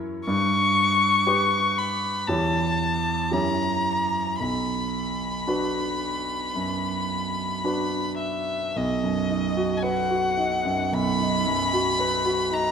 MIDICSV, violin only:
0, 0, Header, 1, 2, 480
1, 0, Start_track
1, 0, Key_signature, 2, "minor"
1, 0, Tempo, 1018676
1, 126, Time_signature, 4, 2, 24, 8
1, 1568, Tempo, 1075269
1, 3008, Tempo, 1094891
1, 3974, Key_signature, 5, "major"
1, 4928, Tempo, 1056338
1, 5738, End_track
2, 0, Start_track
2, 0, Title_t, "Violin"
2, 0, Program_c, 0, 40
2, 125, Note_on_c, 0, 85, 67
2, 840, Note_on_c, 0, 83, 51
2, 847, Note_off_c, 0, 85, 0
2, 1069, Note_on_c, 0, 81, 55
2, 1076, Note_off_c, 0, 83, 0
2, 1567, Note_on_c, 0, 82, 53
2, 1574, Note_off_c, 0, 81, 0
2, 2044, Note_off_c, 0, 82, 0
2, 2047, Note_on_c, 0, 83, 47
2, 3713, Note_off_c, 0, 83, 0
2, 3723, Note_on_c, 0, 76, 43
2, 3978, Note_on_c, 0, 75, 48
2, 3984, Note_off_c, 0, 76, 0
2, 4418, Note_on_c, 0, 80, 41
2, 4425, Note_off_c, 0, 75, 0
2, 4444, Note_on_c, 0, 78, 59
2, 4450, Note_off_c, 0, 80, 0
2, 4930, Note_on_c, 0, 83, 73
2, 4937, Note_off_c, 0, 78, 0
2, 5656, Note_on_c, 0, 82, 69
2, 5662, Note_off_c, 0, 83, 0
2, 5738, Note_off_c, 0, 82, 0
2, 5738, End_track
0, 0, End_of_file